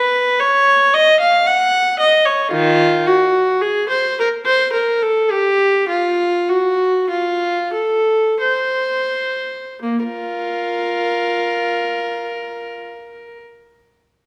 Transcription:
0, 0, Header, 1, 2, 480
1, 0, Start_track
1, 0, Key_signature, -5, "minor"
1, 0, Tempo, 1045296
1, 674, Tempo, 1077199
1, 1150, Time_signature, 3, 2, 24, 8
1, 1634, Tempo, 1132075
1, 2594, Tempo, 1204819
1, 3074, Tempo, 1307190
1, 3554, Tempo, 1415094
1, 5543, End_track
2, 0, Start_track
2, 0, Title_t, "Viola"
2, 0, Program_c, 0, 41
2, 0, Note_on_c, 0, 71, 84
2, 184, Note_on_c, 0, 73, 95
2, 188, Note_off_c, 0, 71, 0
2, 428, Note_off_c, 0, 73, 0
2, 431, Note_on_c, 0, 75, 103
2, 552, Note_off_c, 0, 75, 0
2, 554, Note_on_c, 0, 77, 94
2, 672, Note_off_c, 0, 77, 0
2, 672, Note_on_c, 0, 78, 99
2, 909, Note_off_c, 0, 78, 0
2, 910, Note_on_c, 0, 75, 90
2, 1024, Note_on_c, 0, 73, 77
2, 1028, Note_off_c, 0, 75, 0
2, 1141, Note_on_c, 0, 65, 106
2, 1142, Note_on_c, 0, 51, 82
2, 1148, Note_off_c, 0, 73, 0
2, 1371, Note_off_c, 0, 51, 0
2, 1383, Note_off_c, 0, 65, 0
2, 1386, Note_on_c, 0, 66, 87
2, 1630, Note_on_c, 0, 68, 86
2, 1631, Note_off_c, 0, 66, 0
2, 1748, Note_off_c, 0, 68, 0
2, 1751, Note_on_c, 0, 72, 84
2, 1866, Note_off_c, 0, 72, 0
2, 1879, Note_on_c, 0, 70, 97
2, 1913, Note_off_c, 0, 70, 0
2, 1987, Note_on_c, 0, 72, 99
2, 2104, Note_off_c, 0, 72, 0
2, 2105, Note_on_c, 0, 70, 83
2, 2224, Note_off_c, 0, 70, 0
2, 2229, Note_on_c, 0, 69, 83
2, 2349, Note_off_c, 0, 69, 0
2, 2351, Note_on_c, 0, 67, 91
2, 2594, Note_on_c, 0, 65, 90
2, 2595, Note_off_c, 0, 67, 0
2, 2826, Note_off_c, 0, 65, 0
2, 2836, Note_on_c, 0, 66, 86
2, 3077, Note_off_c, 0, 66, 0
2, 3078, Note_on_c, 0, 65, 82
2, 3306, Note_off_c, 0, 65, 0
2, 3311, Note_on_c, 0, 69, 81
2, 3550, Note_off_c, 0, 69, 0
2, 3558, Note_on_c, 0, 72, 76
2, 4028, Note_off_c, 0, 72, 0
2, 4038, Note_on_c, 0, 58, 67
2, 4108, Note_off_c, 0, 58, 0
2, 4108, Note_on_c, 0, 65, 61
2, 4109, Note_on_c, 0, 70, 74
2, 5056, Note_off_c, 0, 65, 0
2, 5254, Note_off_c, 0, 70, 0
2, 5543, End_track
0, 0, End_of_file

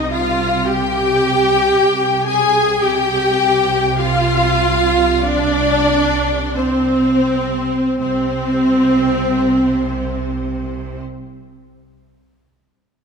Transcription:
0, 0, Header, 1, 6, 480
1, 0, Start_track
1, 0, Tempo, 1075269
1, 1255, Time_signature, 4, 2, 24, 8
1, 1255, Tempo, 1171875
1, 1735, Tempo, 1244813
1, 2215, Tempo, 1318681
1, 2695, Tempo, 1438849
1, 3175, Tempo, 1307190
1, 5032, End_track
2, 0, Start_track
2, 0, Title_t, "Violin section"
2, 0, Program_c, 0, 48
2, 54, Note_on_c, 0, 77, 108
2, 295, Note_off_c, 0, 77, 0
2, 300, Note_on_c, 0, 79, 127
2, 1011, Note_off_c, 0, 79, 0
2, 1014, Note_on_c, 0, 80, 120
2, 1253, Note_off_c, 0, 80, 0
2, 1256, Note_on_c, 0, 79, 127
2, 1735, Note_off_c, 0, 79, 0
2, 1736, Note_on_c, 0, 77, 127
2, 2215, Note_off_c, 0, 77, 0
2, 2216, Note_on_c, 0, 74, 127
2, 2696, Note_off_c, 0, 74, 0
2, 2697, Note_on_c, 0, 72, 96
2, 3167, Note_off_c, 0, 72, 0
2, 3177, Note_on_c, 0, 72, 100
2, 4281, Note_off_c, 0, 72, 0
2, 5032, End_track
3, 0, Start_track
3, 0, Title_t, "Violin section"
3, 0, Program_c, 1, 48
3, 52, Note_on_c, 1, 77, 103
3, 294, Note_off_c, 1, 77, 0
3, 298, Note_on_c, 1, 79, 125
3, 996, Note_off_c, 1, 79, 0
3, 1013, Note_on_c, 1, 80, 127
3, 1253, Note_on_c, 1, 79, 127
3, 1257, Note_off_c, 1, 80, 0
3, 1724, Note_off_c, 1, 79, 0
3, 1734, Note_on_c, 1, 77, 122
3, 2205, Note_off_c, 1, 77, 0
3, 2218, Note_on_c, 1, 74, 127
3, 2697, Note_off_c, 1, 74, 0
3, 2699, Note_on_c, 1, 72, 97
3, 3175, Note_off_c, 1, 72, 0
3, 3179, Note_on_c, 1, 72, 91
3, 4283, Note_off_c, 1, 72, 0
3, 5032, End_track
4, 0, Start_track
4, 0, Title_t, "Viola section"
4, 0, Program_c, 2, 48
4, 58, Note_on_c, 2, 65, 123
4, 297, Note_off_c, 2, 65, 0
4, 299, Note_on_c, 2, 67, 127
4, 1010, Note_on_c, 2, 68, 127
4, 1011, Note_off_c, 2, 67, 0
4, 1251, Note_off_c, 2, 68, 0
4, 1261, Note_on_c, 2, 67, 127
4, 1737, Note_off_c, 2, 67, 0
4, 1737, Note_on_c, 2, 65, 127
4, 2216, Note_off_c, 2, 65, 0
4, 2218, Note_on_c, 2, 62, 127
4, 2697, Note_off_c, 2, 62, 0
4, 2701, Note_on_c, 2, 60, 115
4, 3175, Note_off_c, 2, 60, 0
4, 3179, Note_on_c, 2, 60, 124
4, 4284, Note_off_c, 2, 60, 0
4, 5032, End_track
5, 0, Start_track
5, 0, Title_t, "Cello section"
5, 0, Program_c, 3, 48
5, 0, Note_on_c, 3, 48, 93
5, 1236, Note_off_c, 3, 48, 0
5, 1256, Note_on_c, 3, 48, 99
5, 3074, Note_off_c, 3, 48, 0
5, 3178, Note_on_c, 3, 48, 105
5, 4282, Note_off_c, 3, 48, 0
5, 5032, End_track
6, 0, Start_track
6, 0, Title_t, "Double bass section"
6, 0, Program_c, 4, 48
6, 0, Note_on_c, 4, 36, 86
6, 1237, Note_off_c, 4, 36, 0
6, 1256, Note_on_c, 4, 36, 90
6, 3074, Note_off_c, 4, 36, 0
6, 3177, Note_on_c, 4, 36, 94
6, 4281, Note_off_c, 4, 36, 0
6, 5032, End_track
0, 0, End_of_file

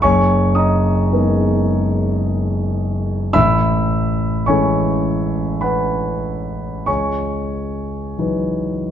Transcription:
0, 0, Header, 1, 2, 480
1, 0, Start_track
1, 0, Tempo, 1104972
1, 17, Time_signature, 3, 2, 24, 8
1, 1457, Tempo, 1138520
1, 2417, Tempo, 1247401
1, 2897, Tempo, 1295896
1, 3650, End_track
2, 0, Start_track
2, 0, Title_t, "Grand piano"
2, 0, Program_c, 0, 0
2, 0, Control_c, 0, 64, 127
2, 9, Note_on_c, 0, 85, 85
2, 14, Note_on_c, 0, 73, 68
2, 14, Note_on_c, 0, 80, 67
2, 16, Note_on_c, 0, 30, 61
2, 24, Control_c, 0, 64, 0
2, 82, Control_c, 0, 64, 127
2, 232, Note_off_c, 0, 73, 0
2, 232, Note_off_c, 0, 80, 0
2, 238, Note_on_c, 0, 87, 62
2, 241, Note_on_c, 0, 75, 46
2, 243, Note_on_c, 0, 82, 49
2, 246, Note_off_c, 0, 85, 0
2, 474, Note_off_c, 0, 30, 0
2, 488, Note_on_c, 0, 56, 44
2, 488, Note_on_c, 0, 59, 37
2, 491, Note_on_c, 0, 70, 42
2, 494, Note_on_c, 0, 63, 37
2, 709, Note_off_c, 0, 75, 0
2, 710, Note_off_c, 0, 82, 0
2, 725, Note_off_c, 0, 87, 0
2, 1439, Note_off_c, 0, 56, 0
2, 1439, Note_off_c, 0, 59, 0
2, 1440, Note_off_c, 0, 70, 0
2, 1441, Note_off_c, 0, 63, 0
2, 1448, Note_on_c, 0, 88, 91
2, 1449, Note_on_c, 0, 76, 65
2, 1449, Note_on_c, 0, 83, 72
2, 1455, Note_on_c, 0, 33, 61
2, 1463, Control_c, 0, 64, 0
2, 1542, Control_c, 0, 64, 127
2, 1909, Note_off_c, 0, 76, 0
2, 1910, Note_off_c, 0, 83, 0
2, 1915, Note_off_c, 0, 33, 0
2, 1924, Note_on_c, 0, 85, 69
2, 1926, Note_off_c, 0, 88, 0
2, 1930, Note_on_c, 0, 73, 53
2, 1930, Note_on_c, 0, 80, 59
2, 1931, Note_on_c, 0, 52, 39
2, 1933, Note_on_c, 0, 56, 35
2, 1937, Note_on_c, 0, 61, 35
2, 1938, Note_on_c, 0, 69, 38
2, 2399, Note_off_c, 0, 73, 0
2, 2399, Note_off_c, 0, 80, 0
2, 2408, Note_on_c, 0, 83, 59
2, 2410, Note_on_c, 0, 78, 52
2, 2412, Note_on_c, 0, 71, 46
2, 2413, Note_off_c, 0, 85, 0
2, 2878, Note_off_c, 0, 71, 0
2, 2878, Note_off_c, 0, 78, 0
2, 2881, Note_off_c, 0, 52, 0
2, 2881, Note_off_c, 0, 56, 0
2, 2883, Note_off_c, 0, 61, 0
2, 2884, Note_off_c, 0, 69, 0
2, 2891, Note_on_c, 0, 85, 65
2, 2892, Note_off_c, 0, 83, 0
2, 2894, Note_on_c, 0, 73, 42
2, 2894, Note_on_c, 0, 80, 49
2, 2895, Note_on_c, 0, 37, 41
2, 2902, Control_c, 0, 64, 0
2, 2978, Control_c, 0, 64, 127
2, 3363, Note_off_c, 0, 37, 0
2, 3379, Note_on_c, 0, 52, 28
2, 3380, Note_on_c, 0, 54, 28
2, 3380, Note_on_c, 0, 63, 29
2, 3383, Note_on_c, 0, 71, 29
2, 3650, Note_off_c, 0, 52, 0
2, 3650, Note_off_c, 0, 54, 0
2, 3650, Note_off_c, 0, 63, 0
2, 3650, Note_off_c, 0, 71, 0
2, 3650, Note_off_c, 0, 73, 0
2, 3650, Note_off_c, 0, 80, 0
2, 3650, Note_off_c, 0, 85, 0
2, 3650, End_track
0, 0, End_of_file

